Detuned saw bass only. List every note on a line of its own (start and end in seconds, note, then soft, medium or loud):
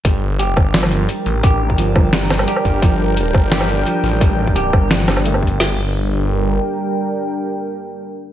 0.05 0.56 G1 loud
0.57 1.08 G1 loud
1.26 1.74 A1 loud
1.74 1.94 G#1 loud
1.96 2.46 G1 loud
2.65 2.81 G1 loud
2.82 3.33 G1 loud
3.34 3.85 G1 loud
4.04 4.72 A1 loud
4.73 5.07 G1 loud
5.08 5.59 G1 medium
5.60 6.60 G1 loud